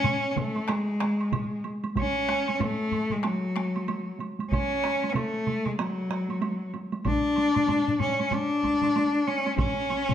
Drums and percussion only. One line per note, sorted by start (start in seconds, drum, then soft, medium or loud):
0.04 taiko low-mid medium
0.04 taiko mid medium
0.04 taiko high medium
0.04 high woodblock soft
0.36 taiko low-mid medium
0.36 taiko mid medium
0.36 taiko high medium
0.36 high woodblock soft
0.56 taiko high soft
0.56 high woodblock soft
0.68 taiko rim medium
0.68 taiko high medium
0.68 high woodblock soft
1.00 taiko rim medium
1.00 taiko high soft
1.00 high woodblock soft
1.20 high woodblock soft
1.32 taiko low-mid medium
1.32 taiko mid medium
1.32 taiko high medium
1.32 high woodblock soft
1.64 taiko high soft
1.64 high woodblock soft
1.84 taiko high soft
1.84 high woodblock soft
1.96 taiko medium
1.96 taiko low-mid medium
1.96 taiko high medium
1.96 high woodblock soft
2.29 taiko rim medium
2.29 taiko high soft
2.29 high woodblock soft
2.48 taiko high soft
2.48 high woodblock soft
2.60 taiko low-mid medium
2.60 taiko high medium
2.60 high woodblock soft
2.92 taiko low-mid medium
2.92 high woodblock soft
3.11 taiko low-mid medium
3.11 taiko high soft
3.11 high woodblock soft
3.23 taiko rim medium
3.23 taiko high medium
3.23 high woodblock soft
3.56 taiko rim medium
3.56 taiko high medium
3.56 high woodblock soft
3.76 taiko high soft
3.76 high woodblock soft
3.88 taiko high medium
3.88 high woodblock soft
4.19 taiko high medium
4.19 high woodblock soft
4.39 taiko high soft
4.39 high woodblock soft
4.51 taiko medium
4.51 taiko mid medium
4.51 taiko high medium
4.51 high woodblock soft
4.84 taiko rim medium
4.84 taiko high medium
4.84 high woodblock soft
5.03 taiko high soft
5.03 high woodblock soft
5.15 taiko mid medium
5.15 taiko high medium
5.15 high woodblock soft
5.47 taiko mid medium
5.47 taiko high medium
5.47 high woodblock soft
5.66 taiko mid medium
5.66 taiko high medium
5.66 high woodblock soft
5.79 taiko rim medium
5.79 taiko high medium
5.79 high woodblock soft
6.10 taiko rim medium
6.10 taiko high medium
6.10 high woodblock soft
6.29 taiko high soft
6.29 high woodblock soft
6.41 taiko high medium
6.41 high woodblock soft
6.74 taiko high medium
6.74 high woodblock soft
6.92 taiko high medium
6.92 high woodblock soft
7.05 taiko medium
7.05 taiko low-mid medium
7.05 taiko high medium
7.05 high woodblock soft
7.36 taiko high medium
7.36 high woodblock soft
7.54 taiko low-mid medium
7.54 taiko high medium
7.54 high woodblock soft
7.68 taiko low-mid medium
7.68 taiko high medium
7.68 high woodblock soft
7.88 taiko low-mid medium
8.00 taiko low-mid medium
8.00 taiko high medium
8.00 high woodblock soft
8.19 taiko high soft
8.19 high woodblock soft
8.32 taiko low-mid medium
8.32 taiko high medium
8.32 high woodblock soft
8.63 taiko medium
8.63 taiko high medium
8.63 high woodblock soft
8.82 taiko low-mid medium
8.82 taiko high soft
8.82 high woodblock soft
8.96 taiko high medium
8.96 high woodblock soft
9.27 taiko high medium
9.27 high woodblock soft
9.46 taiko high medium
9.46 high woodblock soft
9.57 taiko medium
9.57 taiko low-mid medium
9.57 taiko mid medium
9.57 taiko high medium
9.57 high woodblock medium
9.90 taiko high medium
9.90 high woodblock soft
10.09 taiko low-mid medium
10.09 taiko mid medium
10.09 taiko high soft
10.09 high woodblock soft